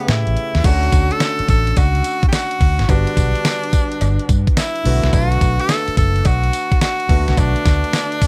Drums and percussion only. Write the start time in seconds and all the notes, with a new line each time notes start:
0.08 snare, closed hi-hat
0.27 closed hi-hat
0.37 closed hi-hat
0.55 snare, closed hi-hat
0.64 kick, closed hi-hat, crash, tambourine, cowbell
0.83 closed hi-hat
0.92 kick, closed hi-hat, tambourine
1.11 closed hi-hat
1.20 snare, closed hi-hat, tambourine, cowbell
1.39 closed hi-hat
1.48 kick, closed hi-hat, tambourine
1.67 closed hi-hat
1.77 kick, closed hi-hat, tambourine, cowbell
1.95 closed hi-hat
2.04 closed hi-hat, tambourine
2.23 kick, closed hi-hat
2.33 snare, closed hi-hat, tambourine, cowbell
2.51 closed hi-hat
2.61 kick, open hi-hat
2.79 snare, closed hi-hat
2.89 kick, closed hi-hat, tambourine, cowbell
3.07 closed hi-hat
3.17 kick, closed hi-hat, tambourine
3.35 closed hi-hat
3.45 snare, closed hi-hat, tambourine, cowbell
3.64 closed hi-hat
3.73 kick, closed hi-hat, tambourine
3.92 closed hi-hat
4.01 closed hi-hat, tambourine, cowbell
4.19 closed hi-hat
4.29 kick, closed hi-hat, tambourine
4.47 kick, closed hi-hat
4.57 snare, closed hi-hat, tambourine, cowbell
4.76 closed hi-hat
4.85 open hi-hat
5.03 snare, closed hi-hat
5.13 kick, closed hi-hat, tambourine, cowbell
5.32 closed hi-hat
5.41 kick, closed hi-hat, tambourine
5.60 closed hi-hat
5.69 snare, closed hi-hat, tambourine, cowbell
5.88 closed hi-hat
5.97 kick, closed hi-hat, tambourine
6.16 closed hi-hat
6.25 kick, closed hi-hat, tambourine, cowbell
6.44 closed hi-hat
6.53 closed hi-hat, tambourine
6.72 kick, closed hi-hat
6.81 snare, closed hi-hat, tambourine, cowbell
7.00 closed hi-hat
7.09 kick, open hi-hat
7.28 snare, closed hi-hat
7.37 kick, closed hi-hat, tambourine, cowbell
7.56 closed hi-hat
7.65 kick, snare, closed hi-hat, tambourine
7.84 closed hi-hat
7.93 snare, closed hi-hat, tambourine, cowbell
8.12 closed hi-hat
8.22 kick, open hi-hat, tambourine